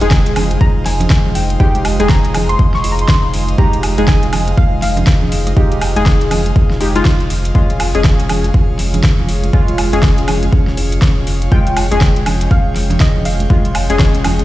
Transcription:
Already playing: analog synth pad G#3 F4 C5 D#5 F5, synth pluck G5
0.01 sub bass F1, synth keys G#3 D#4 G#4, closed hi-hat, high conga
0.11 kick, snare
0.26 closed hi-hat
0.36 sub bass F1, open hi-hat, low conga, high woodblock
0.51 closed hi-hat, high conga
0.61 synth pluck A#5, kick
0.85 sub bass F1, synth pluck G#5, snare, open hi-hat
1.00 closed hi-hat, low conga
1.10 kick, snare
1.25 low conga
1.35 sub bass F1, synth pluck G5, open hi-hat, high bongo
1.50 closed hi-hat, high conga
1.60 synth keys G#3 D#4 G4, synth pluck G5, kick
1.75 closed hi-hat, high conga
1.85 sub bass F1, open hi-hat, high woodblock
2.00 sub bass F1, synth keys G#3 D#4 G#4, closed hi-hat, high conga
2.09 synth pluck A#5, kick, snare
2.25 closed hi-hat
2.34 sub bass F1, open hi-hat, high bongo, low conga, high woodblock
2.49 synth pluck C6, closed hi-hat, high conga
2.59 kick
2.74 synth pluck C#6, snare
2.82 sub bass F1, synth pluck C6, open hi-hat, high bongo
2.92 synth pluck A#5
2.99 synth pluck C6, closed hi-hat
3.08 synth pluck C6, kick, snare
3.34 sub bass F1, open hi-hat
3.49 closed hi-hat
3.58 synth keys G#3 D#4 G4, synth pluck A#5, kick
3.73 closed hi-hat, high conga
3.83 sub bass F1, open hi-hat, high woodblock
3.98 sub bass F1, synth keys G#3 D#4 G#4, closed hi-hat, high conga
4.07 synth pluck G#5, kick, snare
4.23 closed hi-hat
4.33 sub bass F1, open hi-hat, low conga, high woodblock
4.47 closed hi-hat, high conga
4.57 synth pluck F5, kick
4.82 sub bass F1, synth pluck F5, snare, open hi-hat
4.97 closed hi-hat, low conga
5.07 kick, snare
5.22 low conga
5.32 sub bass F1, open hi-hat, high bongo
5.47 synth pluck D#5, closed hi-hat, high conga
5.57 synth keys G#3 D#4 G4, kick
5.72 closed hi-hat, high conga
5.81 sub bass F1, open hi-hat, high woodblock
5.96 sub bass F1, synth keys G#3 D#4 G#4, closed hi-hat, high conga
6.06 kick, snare
6.21 closed hi-hat
6.31 sub bass F1, open hi-hat, high bongo, low conga, high woodblock
6.46 closed hi-hat, high conga
6.56 kick
6.70 snare
6.81 sub bass F1, synth keys G#3 D#4 G4, open hi-hat, high bongo
6.96 synth keys G#3 D#4 F4, closed hi-hat
7.05 kick, snare
7.20 closed hi-hat
7.30 sub bass F1, open hi-hat
7.45 closed hi-hat
7.55 synth keys G#3 C#4 F4, analog synth pad C#4 C#5 F5, kick
7.70 closed hi-hat, high conga
7.80 sub bass F1, open hi-hat, high woodblock
7.95 sub bass F1, synth keys G#3 C#4 G#4, closed hi-hat, high conga
8.04 kick, snare
8.20 closed hi-hat
8.29 sub bass F1, open hi-hat, low conga, high woodblock
8.44 closed hi-hat, high conga
8.54 kick
8.79 sub bass F1, snare, open hi-hat
8.94 closed hi-hat, low conga
9.03 kick, snare
9.19 low conga
9.28 sub bass F1, open hi-hat, high bongo
9.44 closed hi-hat, high conga
9.53 synth keys G#3 C#4 F4, kick
9.68 closed hi-hat, high conga
9.78 sub bass F1, open hi-hat, high woodblock
9.93 sub bass F1, synth keys G#3 C#4 G#4, closed hi-hat, high conga
10.02 kick, snare
10.18 closed hi-hat
10.28 sub bass F1, open hi-hat, high bongo, low conga, high woodblock
10.43 closed hi-hat, high conga
10.53 kick
10.67 snare
10.77 sub bass F1, open hi-hat, high bongo
10.92 closed hi-hat
11.02 kick, snare
11.27 sub bass F1, open hi-hat
11.42 closed hi-hat
11.52 synth keys G#3 C#4 F4, analog synth pad G5, synth pluck G5, kick
11.67 closed hi-hat, high conga
11.77 sub bass F1, open hi-hat, high woodblock
11.91 sub bass F1, synth keys G#3 C#4 G#4, closed hi-hat, high conga
12.01 kick, snare
12.16 closed hi-hat
12.26 sub bass F1, open hi-hat, low conga, high woodblock
12.41 closed hi-hat, high conga
12.51 synth pluck F5, kick
12.75 sub bass F1, snare, open hi-hat
12.90 closed hi-hat, low conga
13.00 synth pluck D#5, kick, snare
13.16 low conga
13.25 sub bass F1, synth pluck F5, open hi-hat, high bongo
13.40 closed hi-hat, high conga
13.50 synth keys G#3 C#4 F4, kick
13.65 closed hi-hat, high conga
13.75 sub bass F1, open hi-hat, high woodblock
13.90 sub bass F1, synth keys G#3 C#4 G#4, closed hi-hat, high conga
13.99 kick, snare
14.15 closed hi-hat
14.24 sub bass F1, open hi-hat, high bongo, low conga, high woodblock
14.38 closed hi-hat, high conga

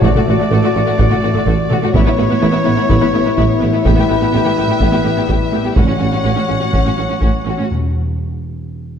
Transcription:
Already playing: french horn section A3 F#4
0.02 double bass section A1, tuba A1, cello section A2, viola section A3, violin section F#4 D5, trumpet D5, taiko
0.14 cello section A2, viola section A3, violin section F#4, taiko mid
0.27 double bass section A1, tuba A1, cello section A2, viola section A3, violin section F#4
0.39 cello section A2, viola section A3, violin section F#4
0.51 tuba A1, double bass section A1, cello section A2, viola section A3, violin section F#4
0.63 cello section A2, viola section A3, violin section F#4
0.75 tuba A1, double bass section A1, cello section A2, viola section A3, violin section F#4
0.86 cello section A2, viola section A3, violin section F#4
0.98 double bass section A1, tuba A1, cello section A2, viola section A3, violin section F#4, taiko
1.10 cello section A2, viola section A3, violin section F#4, taiko mid
1.22 tuba A1, double bass section A1, cello section A2, viola section A3, violin section F#4
1.33 cello section A2, viola section A3, violin section F#4, taiko mid
1.46 double bass section A1, tuba A1, cello section A2, viola section A3, violin section F#4, taiko
1.70 tuba A1, double bass section A1, cello section A2, viola section A3, violin section F#4, taiko mid
1.82 cello section A2, viola section A3, violin section F#4
1.94 double bass section A1, tuba A1, cello section A2, viola section B3, french horn section B3 E4, violin section E4 C#5, trumpet C#5, taiko
2.06 cello section A2, viola section B3, violin section E4
2.17 tuba A1, double bass section A1, cello section A2, viola section B3, violin section E4
2.29 cello section A2, viola section B3, violin section E4
2.41 tuba A1, double bass section A1, cello section A2, viola section B3, violin section E4
2.52 cello section A2, viola section B3, violin section E4
2.63 tuba A1, double bass section A1, cello section A2, viola section B3, violin section E4
2.76 cello section A2, viola section B3, violin section E4
2.89 tuba A1, double bass section A1, cello section A2, viola section B3, violin section E4, taiko
3.01 cello section A2, viola section B3, violin section E4
3.13 tuba A1, double bass section A1, cello section A2, viola section B3, violin section E4
3.25 cello section A2, viola section B3, violin section E4
3.37 tuba A1, double bass section A1, cello section A2, viola section B3, violin section E4, taiko
3.60 tuba A1, double bass section A1, cello section A2, viola section B3, violin section E4
3.73 cello section A2, viola section B3, violin section E4
3.84 tuba A1, double bass section A1, cello section A2, french horn section G3, viola section B3, violin section G4 E5, trumpet B4, taiko
3.96 cello section A2, viola section B3, violin section G4
4.08 tuba A1, double bass section A1, cello section A2, viola section B3, violin section G4
4.21 cello section A2, viola section B3, violin section G4
4.32 tuba A1, double bass section A1, cello section A2, viola section B3, violin section G4
4.44 cello section A2, viola section B3, violin section G4
4.56 tuba A1, double bass section A1, cello section A2, viola section B3, violin section G4
4.67 cello section A2, viola section B3, violin section G4
4.80 tuba A1, double bass section A1, cello section A2, viola section B3, violin section G4, taiko
4.92 cello section A2, viola section B3, violin section G4
5.03 tuba A1, double bass section A1, cello section A2, viola section B3, violin section G4
5.15 cello section A2, viola section B3, violin section G4
5.28 tuba A1, double bass section A1, cello section A2, viola section B3, violin section G4, taiko
5.52 tuba A1, double bass section A1, cello section A2, viola section B3, violin section G4
5.63 cello section A2, viola section B3, violin section G4
5.76 tuba A1, double bass section A1, cello section A2, timpani A2, viola section C#4, french horn section C#4, violin section F#4 F#5, trumpet C#5, taiko
5.87 cello section A2, viola section C#4, violin section F#4
6.00 tuba A1, double bass section A1, cello section A2, viola section C#4, violin section F#4
6.12 cello section A2, viola section C#4, violin section F#4
6.24 double bass section A1, tuba A1, cello section A2, viola section C#4, violin section F#4
6.36 cello section A2, viola section C#4, violin section F#4
6.48 tuba A1, double bass section A1, cello section A2, viola section C#4, violin section F#4
6.60 cello section A2, viola section C#4, violin section F#4
6.72 tuba A1, double bass section A1, cello section A2, french horn section F#3, viola section C#4, violin section F#4, taiko
6.85 cello section A2, viola section C#4, violin section F#4
6.97 tuba A1, double bass section A1, cello section A2, viola section C#4, violin section F#4
7.09 cello section A2, viola section C#4, violin section F#4
7.21 double bass section A1, tuba A1, cello section A2, viola section C#4, violin section F#4, taiko
7.45 double bass section A1, tuba A1, cello section A2, viola section C#4
7.49 violin section F#4
7.57 cello section A2, viola section C#4
7.62 violin section F#4
7.71 timpani E2

